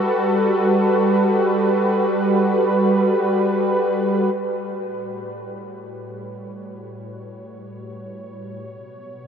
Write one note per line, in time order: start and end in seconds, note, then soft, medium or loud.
0.00 4.45 G3 medium
0.00 8.64 G3 medium
0.00 9.27 F#4 medium
0.00 6.07 A4 medium
0.00 9.27 B4 medium
4.35 8.64 A2 medium
4.79 9.27 C#5 medium
8.63 9.27 B2 medium
8.80 9.27 F#3 medium